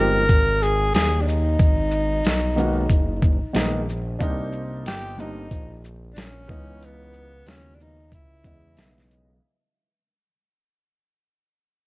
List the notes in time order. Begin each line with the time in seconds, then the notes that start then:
Already playing: G1 F3 G#3 C4 D#4 G4
0.00 A#4
0.29 G#1, kick, closed hi-hat
0.62 G#4, shaker
0.94 D#2 G#4, snare, closed hi-hat
1.21 D4
1.27 D#4, shaker
1.59 G#1, kick, closed hi-hat
1.91 shaker
2.25 B1, snare, closed hi-hat
2.56 D#3 G#3 A#3 B3 F#4, shaker
2.90 F#1, kick, closed hi-hat
3.22 kick, shaker
3.42 A#1
3.53 A#1 D#3 G#3 A#3 B3 D#4, snare, closed hi-hat
3.89 shaker
4.19 C2 G3 A#3 C4 D4 D#4, kick, closed hi-hat
4.52 shaker
4.86 G1 G4, snare, closed hi-hat
5.17 D3 G3 A#3 C4 D#4, shaker
5.51 A#1, kick, closed hi-hat
5.85 shaker
6.13 A#1 D4, closed hi-hat
6.18 C#4, snare
6.47 C#2 C#3 E3 G#3 B3 D#4, kick, shaker
6.83 B3, closed hi-hat
7.13 shaker
7.45 D#2 C#3 G#3 B3 C#4 E4 F#4, snare, closed hi-hat
7.75 D4
7.80 D#4, shaker
8.12 C#2 E4, kick, closed hi-hat
8.43 E2 C#3 E3 G#3 B3 D#5, kick, closed hi-hat, shaker
8.77 B1, snare, closed hi-hat
8.98 snare
9.11 closed hi-hat, shaker